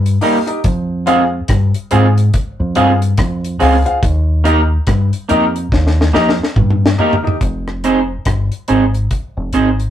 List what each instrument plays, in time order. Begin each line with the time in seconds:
Already playing: fingered electric bass G2
0.06 closed hi-hat
0.21 clean electric guitar G3 A#3 D#4 G4, grand piano D#4 G4 A#4 D#5, open hi-hat
0.46 grand piano D#4 G4 A#4 D#5, closed hi-hat
0.64 fingered electric bass F2, kick, closed hi-hat
1.06 clean electric guitar G#3 C4 F4 G#4, grand piano F4 G#4 C5 F5, closed hi-hat
1.48 fingered electric bass G2, kick, cross-stick, closed hi-hat
1.74 closed hi-hat
1.91 fingered electric bass G#2, clean electric guitar G#3 C4 F4 G#4, grand piano F4 G#4 C5 F5, closed hi-hat
2.18 closed hi-hat
2.34 kick, closed hi-hat
2.60 fingered electric bass F2
2.75 fingered electric bass G2, clean electric guitar G#3 C4 F4 G#4, grand piano F4 G#4 C5 F5, closed hi-hat
3.02 closed hi-hat
3.18 fingered electric bass F2, kick, cross-stick, closed hi-hat
3.44 closed hi-hat
3.60 fingered electric bass C#2, clean electric guitar G#3 C4 F4 G#4, grand piano F4 G#4 C5 F5, open hi-hat
3.85 grand piano F4 G#4 C5 F5, closed hi-hat
4.03 fingered electric bass D#2, kick, closed hi-hat
4.44 clean electric guitar A#3 D#4 G4 A#4, grand piano D#4 G4 A#4 D#5, closed hi-hat
4.87 fingered electric bass G2, kick, cross-stick, closed hi-hat
5.13 closed hi-hat
5.29 fingered electric bass F2, clean electric guitar A#3 D#4 G4 A#4, grand piano D#4 G4 A#4 D#5, closed hi-hat
5.56 closed hi-hat
5.72 fingered electric bass D#2, kick, snare
5.87 snare
6.01 snare
6.13 fingered electric bass F2, clean electric guitar A#3 D#4 G4 A#4, grand piano D#4 G4 A#4 D#5, snare
6.29 snare
6.43 snare
6.56 fingered electric bass G2, kick, mid tom
6.70 mid tom
6.86 snare
6.98 clean electric guitar A#3 D#4 G4 A#4, grand piano D#4 G4 A#4 D#5, floor tom
7.13 floor tom
7.23 grand piano D#4 G4 A#4 D#5
7.27 floor tom
7.41 fingered electric bass F1, kick, closed hi-hat
7.68 cross-stick
7.84 clean electric guitar C4 D#4 G#4 C5, closed hi-hat
8.25 fingered electric bass G1, kick, cross-stick, closed hi-hat
8.52 closed hi-hat
8.68 fingered electric bass G#1, clean electric guitar C4 D#4 G#4 C5, closed hi-hat
8.94 closed hi-hat
9.11 kick, closed hi-hat
9.37 fingered electric bass F1
9.53 fingered electric bass G#1, clean electric guitar C4 D#4 G#4 C5, closed hi-hat
9.80 closed hi-hat